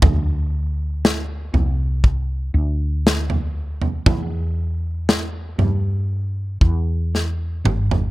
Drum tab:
SD |----o-------o---|----o-------o---|
T2 |----------------|--------------o-|
FT |o-----o------o-o|o-----o--------o|
BD |o-------o-------|o---------o-----|